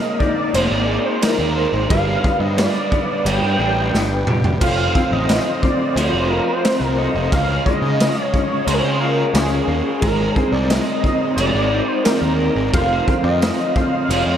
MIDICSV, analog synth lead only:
0, 0, Header, 1, 2, 480
1, 0, Start_track
1, 0, Tempo, 677966
1, 1348, Time_signature, 4, 2, 24, 8
1, 10177, End_track
2, 0, Start_track
2, 0, Title_t, "Analog synth lead"
2, 0, Program_c, 0, 81
2, 0, Note_on_c, 0, 75, 96
2, 130, Note_off_c, 0, 75, 0
2, 134, Note_on_c, 0, 74, 101
2, 384, Note_on_c, 0, 72, 109
2, 394, Note_off_c, 0, 74, 0
2, 498, Note_on_c, 0, 74, 102
2, 509, Note_off_c, 0, 72, 0
2, 741, Note_on_c, 0, 72, 94
2, 752, Note_off_c, 0, 74, 0
2, 865, Note_on_c, 0, 70, 98
2, 876, Note_off_c, 0, 72, 0
2, 1227, Note_off_c, 0, 70, 0
2, 1344, Note_on_c, 0, 77, 120
2, 1698, Note_on_c, 0, 75, 103
2, 1708, Note_off_c, 0, 77, 0
2, 1814, Note_off_c, 0, 75, 0
2, 1819, Note_on_c, 0, 74, 112
2, 2307, Note_on_c, 0, 79, 118
2, 2317, Note_off_c, 0, 74, 0
2, 3026, Note_off_c, 0, 79, 0
2, 3264, Note_on_c, 0, 77, 125
2, 3628, Note_on_c, 0, 75, 116
2, 3639, Note_off_c, 0, 77, 0
2, 3977, Note_on_c, 0, 74, 102
2, 3988, Note_off_c, 0, 75, 0
2, 4215, Note_on_c, 0, 72, 108
2, 4225, Note_off_c, 0, 74, 0
2, 4458, Note_on_c, 0, 70, 97
2, 4469, Note_off_c, 0, 72, 0
2, 4581, Note_off_c, 0, 70, 0
2, 4585, Note_on_c, 0, 72, 111
2, 4854, Note_off_c, 0, 72, 0
2, 4854, Note_on_c, 0, 70, 111
2, 4940, Note_on_c, 0, 75, 99
2, 4951, Note_off_c, 0, 70, 0
2, 5175, Note_off_c, 0, 75, 0
2, 5179, Note_on_c, 0, 77, 122
2, 5403, Note_off_c, 0, 77, 0
2, 5422, Note_on_c, 0, 75, 111
2, 5833, Note_off_c, 0, 75, 0
2, 5833, Note_on_c, 0, 73, 111
2, 5992, Note_off_c, 0, 73, 0
2, 6015, Note_on_c, 0, 73, 90
2, 6132, Note_on_c, 0, 72, 102
2, 6143, Note_off_c, 0, 73, 0
2, 6185, Note_on_c, 0, 70, 87
2, 6195, Note_off_c, 0, 72, 0
2, 6226, Note_on_c, 0, 72, 101
2, 6237, Note_off_c, 0, 70, 0
2, 6368, Note_on_c, 0, 70, 97
2, 6378, Note_off_c, 0, 72, 0
2, 6604, Note_off_c, 0, 70, 0
2, 6609, Note_on_c, 0, 68, 96
2, 6948, Note_off_c, 0, 68, 0
2, 7086, Note_on_c, 0, 70, 108
2, 7355, Note_off_c, 0, 70, 0
2, 7355, Note_on_c, 0, 68, 108
2, 7447, Note_on_c, 0, 74, 93
2, 7458, Note_off_c, 0, 68, 0
2, 7567, Note_on_c, 0, 75, 108
2, 7578, Note_off_c, 0, 74, 0
2, 8038, Note_off_c, 0, 75, 0
2, 8042, Note_on_c, 0, 74, 110
2, 8411, Note_on_c, 0, 72, 96
2, 8422, Note_off_c, 0, 74, 0
2, 8521, Note_off_c, 0, 72, 0
2, 8525, Note_on_c, 0, 70, 89
2, 8867, Note_off_c, 0, 70, 0
2, 9016, Note_on_c, 0, 77, 112
2, 9354, Note_off_c, 0, 77, 0
2, 9375, Note_on_c, 0, 75, 100
2, 9739, Note_on_c, 0, 77, 103
2, 9749, Note_off_c, 0, 75, 0
2, 10177, Note_off_c, 0, 77, 0
2, 10177, End_track
0, 0, End_of_file